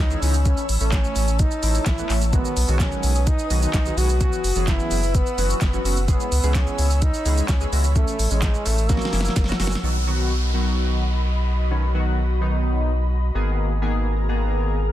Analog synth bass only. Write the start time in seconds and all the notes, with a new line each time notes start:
0.00 C#2
0.22 C#2
0.69 A1
0.81 A1
1.16 A1
1.63 A1
1.86 A1
2.10 A1
2.57 B1
2.68 B1
3.03 B1
3.50 B1
3.74 B1
3.97 B1
4.44 F#1
4.56 F#1
4.91 F#1
5.38 F#1
5.62 F#1
5.85 F#1
6.32 C#2
6.43 C#2
6.79 C#2
7.25 C#2
7.49 C#2
7.72 C#2
8.19 A1
8.31 A1
8.66 A1
9.13 F#1
9.37 F#1
9.60 F#1
9.83 B1
13.35 G#1